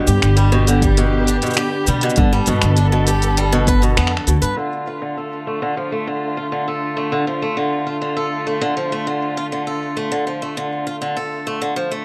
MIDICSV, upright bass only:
0, 0, Header, 1, 2, 480
1, 0, Start_track
1, 0, Tempo, 600000
1, 1738, Time_signature, 4, 2, 24, 8
1, 9639, End_track
2, 0, Start_track
2, 0, Title_t, "Upright bass"
2, 0, Program_c, 0, 32
2, 60, Note_on_c, 0, 43, 110
2, 139, Note_off_c, 0, 43, 0
2, 182, Note_on_c, 0, 31, 98
2, 1077, Note_off_c, 0, 31, 0
2, 1500, Note_on_c, 0, 47, 84
2, 1660, Note_off_c, 0, 47, 0
2, 1739, Note_on_c, 0, 43, 107
2, 1899, Note_off_c, 0, 43, 0
2, 1978, Note_on_c, 0, 43, 101
2, 2058, Note_off_c, 0, 43, 0
2, 2102, Note_on_c, 0, 31, 106
2, 3180, Note_on_c, 0, 41, 82
2, 3192, Note_off_c, 0, 31, 0
2, 3339, Note_off_c, 0, 41, 0
2, 3416, Note_on_c, 0, 38, 85
2, 3497, Note_off_c, 0, 38, 0
2, 3537, Note_on_c, 0, 43, 78
2, 3618, Note_off_c, 0, 43, 0
2, 9639, End_track
0, 0, End_of_file